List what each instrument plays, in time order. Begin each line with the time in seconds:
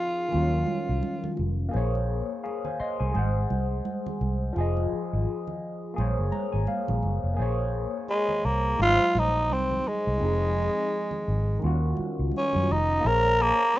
Already playing: tine electric piano F3 C4 D#4 G#4, tenor saxophone F4
0.28 tine electric piano D#3 C#4, muted conga, high conga
0.34 fingered electric bass D#2, tine electric piano F#3 F4
0.67 high conga
0.89 fingered electric bass C2
1.03 muted conga, high conga
1.24 high conga, low conga
1.37 fingered electric bass F1, high conga
1.69 tine electric piano A#3 G#4
1.74 fingered electric bass A#1, tine electric piano C5 C#5, muted conga
1.95 muted conga
2.44 tine electric piano G#4 F5, muted conga
2.65 tine electric piano C5 G#5, low conga
2.80 tine electric piano D#5 C6, muted fingered electric bass stroke
3.00 fingered electric bass C2, tine electric piano C5 G#5
3.11 tine electric piano G#3 G#4, muted conga, high conga
3.15 fingered electric bass G#1, tine electric piano C5 F#5
3.50 fingered electric bass C2, high conga
3.85 muted conga, high conga
4.07 muted conga, high conga, low conga
4.21 fingered electric bass C2, high conga
4.53 fingered electric bass F1, tine electric piano F3 F4, muted conga
4.58 tine electric piano G#4 D#5
4.77 muted conga
4.93 muted fingered electric bass stroke
5.13 fingered electric bass G#1
5.47 low conga
5.94 tine electric piano A#3 G#4
5.98 fingered electric bass A#1, tine electric piano C5 C#5, muted conga, high conga
6.19 fingered electric bass F#1
6.32 tine electric piano A#5, high conga
6.52 fingered electric bass G#1, tine electric piano G#5
6.67 tine electric piano F5, high conga
6.88 fingered electric bass A#1, muted conga, high conga, low conga
7.03 fingered electric bass F#1, high conga
7.24 fingered electric bass F1
7.34 tine electric piano A#3 G#4
7.39 fingered electric bass A#1, tine electric piano C5 C#5
8.08 tenor saxophone G#3, muted conga
8.29 muted conga, low conga
8.45 fingered electric bass C2, tenor saxophone A#3
8.75 fingered electric bass G#1, tine electric piano G#3 D#4
8.80 tine electric piano F#3 C5, tenor saxophone F4, high conga
9.15 fingered electric bass A#1, high conga
9.19 tenor saxophone D#4
9.50 fingered electric bass C2, tenor saxophone C4, muted conga, high conga
9.71 high conga, low conga
9.84 tenor saxophone G#3, high conga
10.07 fingered electric bass C2
10.18 fingered electric bass F1, tine electric piano F3 C4
10.23 tine electric piano D#4 G#4
10.41 muted conga
11.11 muted conga, low conga
11.28 fingered electric bass G#1
11.59 tine electric piano D#3 C#4, high conga
11.64 fingered electric bass D#2, tine electric piano F4 F#4
11.97 muted fingered electric bass stroke, high conga
12.19 fingered electric bass C#2
12.32 high conga
12.37 tenor saxophone C#4
12.53 fingered electric bass F#2, muted conga, high conga, low conga
12.67 fingered electric bass F1, high conga
12.72 tenor saxophone D#4
13.00 tine electric piano A#3 G#4
13.05 fingered electric bass A#1, tenor saxophone A#4, tine electric piano C5 C#5
13.23 muted conga
13.42 tenor saxophone A#3
13.74 muted conga